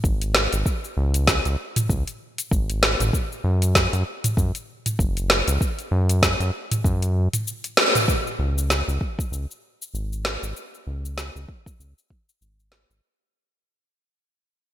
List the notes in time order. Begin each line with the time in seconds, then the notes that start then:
0.04 G#1, kick, shaker
0.22 closed hi-hat, shaker
0.35 snare
0.53 G#1, closed hi-hat, shaker
0.66 kick, shaker
0.84 shaker
0.97 C#2
1.14 closed hi-hat, shaker
1.27 kick, snare, shaker
1.45 C#2, closed hi-hat, shaker
1.76 closed hi-hat, mid tom, shaker
1.89 C#2, kick, shaker
2.07 closed hi-hat, shaker
2.38 closed hi-hat, shaker
2.51 G#1, kick, shaker
2.70 closed hi-hat, shaker
2.83 snare
3.00 G#1, closed hi-hat, mid tom, shaker
3.13 kick, shaker
3.32 shaker
3.44 F#2
3.62 closed hi-hat, shaker
3.75 kick, snare, shaker
3.93 F#2, closed hi-hat, shaker
4.24 closed hi-hat, mid tom, shaker
4.37 F#2, kick, shaker
4.55 closed hi-hat, shaker
4.86 closed hi-hat, mid tom, shaker
4.99 F#1, kick, shaker
5.17 closed hi-hat, shaker
5.30 snare
5.48 C#2, closed hi-hat, shaker
5.61 kick, shaker
5.79 closed hi-hat, shaker
5.91 F#2
6.09 closed hi-hat, shaker
6.23 kick, snare, shaker
6.40 F#2, closed hi-hat, shaker
6.71 closed hi-hat, mid tom, shaker
6.84 F#2, kick, shaker
7.02 closed hi-hat, shaker
7.33 closed hi-hat, mid tom, shaker
7.47 shaker
7.64 closed hi-hat, shaker
7.77 snare
7.95 closed hi-hat, mid tom, shaker
8.08 kick, shaker
8.27 shaker
8.39 C#2
8.58 shaker
8.70 snare, shaker
8.88 C#2, shaker
9.01 kick
9.19 kick, shaker
9.32 C#2, shaker
9.51 shaker
9.82 shaker
9.94 G#1, shaker
10.13 shaker
10.25 snare
10.43 G#1, shaker
10.57 shaker
10.75 shaker
10.87 C#2
11.05 shaker
11.18 snare, shaker
11.35 C#2, shaker
11.49 kick
11.66 kick, shaker
11.79 C#2, shaker
11.98 shaker
12.10 kick
12.29 shaker
12.41 G#1, shaker
12.60 shaker
12.72 snare
12.90 G#1, shaker